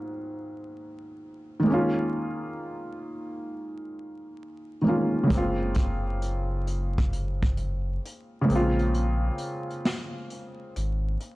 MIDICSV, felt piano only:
0, 0, Header, 1, 2, 480
1, 0, Start_track
1, 0, Key_signature, -5, "major"
1, 0, Tempo, 909091
1, 881, Time_signature, 4, 2, 24, 8
1, 5996, End_track
2, 0, Start_track
2, 0, Title_t, "Felt piano"
2, 0, Program_c, 0, 0
2, 0, Control_c, 0, 64, 127
2, 0, Note_on_c, 0, 44, 65
2, 0, Note_on_c, 0, 51, 64
2, 0, Note_on_c, 0, 54, 62
2, 0, Note_on_c, 0, 58, 59
2, 0, Note_on_c, 0, 60, 60
2, 0, Note_on_c, 0, 65, 70
2, 835, Note_off_c, 0, 51, 0
2, 842, Note_off_c, 0, 44, 0
2, 843, Note_on_c, 0, 51, 68
2, 857, Note_off_c, 0, 54, 0
2, 861, Note_on_c, 0, 56, 59
2, 865, Note_off_c, 0, 58, 0
2, 878, Note_off_c, 0, 65, 0
2, 879, Note_on_c, 0, 58, 61
2, 886, Control_c, 0, 64, 0
2, 889, Note_off_c, 0, 60, 0
2, 898, Note_on_c, 0, 61, 61
2, 916, Note_on_c, 0, 65, 70
2, 986, Control_c, 0, 64, 127
2, 2520, Note_off_c, 0, 51, 0
2, 2530, Note_off_c, 0, 56, 0
2, 2539, Note_off_c, 0, 58, 0
2, 2543, Note_on_c, 0, 51, 50
2, 2548, Note_off_c, 0, 61, 0
2, 2551, Note_on_c, 0, 56, 44
2, 2557, Note_off_c, 0, 65, 0
2, 2560, Note_on_c, 0, 58, 47
2, 2570, Note_on_c, 0, 61, 45
2, 2579, Note_on_c, 0, 65, 55
2, 2763, Note_on_c, 0, 49, 67
2, 2775, Note_off_c, 0, 56, 0
2, 2783, Note_on_c, 0, 56, 59
2, 2792, Note_off_c, 0, 51, 0
2, 2793, Note_off_c, 0, 58, 0
2, 2801, Note_on_c, 0, 58, 62
2, 2805, Note_off_c, 0, 61, 0
2, 2808, Control_c, 0, 64, 0
2, 2810, Note_off_c, 0, 65, 0
2, 2820, Note_on_c, 0, 60, 65
2, 2837, Note_on_c, 0, 65, 71
2, 2914, Control_c, 0, 64, 127
2, 4435, Note_off_c, 0, 49, 0
2, 4442, Note_on_c, 0, 49, 69
2, 4450, Note_off_c, 0, 56, 0
2, 4459, Note_on_c, 0, 56, 66
2, 4460, Note_off_c, 0, 58, 0
2, 4469, Note_off_c, 0, 60, 0
2, 4478, Note_off_c, 0, 65, 0
2, 4480, Note_on_c, 0, 58, 63
2, 4487, Control_c, 0, 64, 0
2, 4496, Note_on_c, 0, 60, 65
2, 4516, Note_on_c, 0, 65, 77
2, 4577, Control_c, 0, 64, 127
2, 5996, Note_off_c, 0, 49, 0
2, 5996, Note_off_c, 0, 56, 0
2, 5996, Note_off_c, 0, 58, 0
2, 5996, Note_off_c, 0, 60, 0
2, 5996, Note_off_c, 0, 65, 0
2, 5996, End_track
0, 0, End_of_file